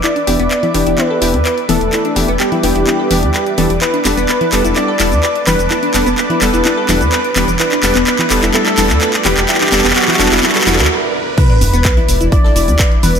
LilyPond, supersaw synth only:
\new Staff \with { instrumentName = "Supersaw synth" } { \time 4/4 \key e \minor \tempo 4 = 127 r8 <e b d' g'>16 r8. <e b d' g'>4 <e b d' g'>16 r8. <e b d' a'>16 r16 | r8 <e b d' g'>16 r8. <e b d' g'>4 <e b d' g'>16 r8. <e b d' a'>16 r16 | r8 <g b d' a'>16 r8. <g b d' a'>4 <g b d' a'>16 r8. <g b d' b'>16 r16 | r8 <g b d' a'>16 r8. <g b d' a'>4 <g b d' a'>16 r8. <g b d' b'>16 r16 |
r8 <g b d' a'>16 r8. <g b d' a'>4 <g b d' a'>16 r8. <g b d' b'>16 r16 | r8 <g b d' a'>16 r8. <g b d' a'>4 <g b d' a'>16 r4 r16 | r1 | }